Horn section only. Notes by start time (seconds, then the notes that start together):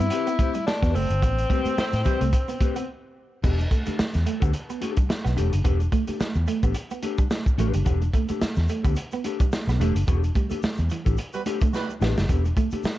1.78 G3 C4 E4 C5
2.05 G3 C4 E4 C5
11.34 G3 B3 F#4 B4
11.73 G3 B3 F#4 B4